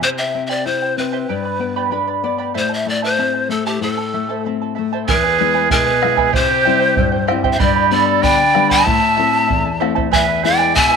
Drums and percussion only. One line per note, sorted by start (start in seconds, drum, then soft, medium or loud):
5.08 bombo low medium
5.70 bombo low medium
6.03 bombo rim medium
6.17 bombo low medium
6.33 bombo low medium
6.97 bombo low medium
7.28 bombo rim medium
7.44 bombo low medium
7.60 bombo low medium
8.23 bombo low medium
8.55 bombo rim medium
8.71 bombo low medium
8.87 bombo low medium
9.50 bombo low medium
9.82 bombo rim soft
9.97 bombo low medium
10.13 bombo low medium
10.76 bombo low medium